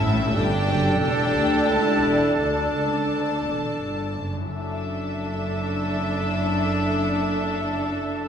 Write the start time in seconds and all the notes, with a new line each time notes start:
Already playing: C#4 E4 A4 E5
0.01 A1 A2
0.22 D4
0.26 G4
0.31 G2 D4 A4 G5
0.35 G1 G4 A4 D5
0.67 F#1 F#2
1.01 E1 E2 D4 G4 G5
1.34 D2
1.69 C#2 E4 A5
2.03 E1 E2
2.37 D2 D4 A4 A5
2.73 C#2
3.09 D2
3.44 E1 E2
3.80 G1 G2
4.15 F#1 F#2
4.32 F#2
4.37 D4
4.41 E4
4.46 A4
4.50 F#1 F#2 D4 E4 A4 E5